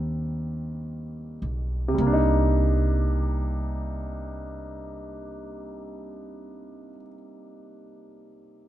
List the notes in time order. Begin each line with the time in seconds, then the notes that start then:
Already playing: D#2 D#3 G3 A#3 C4 D4
1.42 B1
1.88 C3
1.94 G3
1.98 C2 A#3
2.07 D4
2.13 D#4